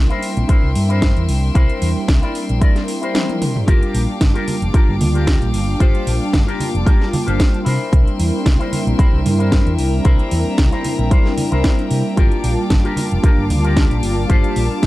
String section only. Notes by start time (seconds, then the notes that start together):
Already playing: A#3 E5 G5 C6
3.68 A#3 F5 G5 D6
7.66 E5 G5 C6
9.79 A#5
12.18 F5 D6
14.30 A5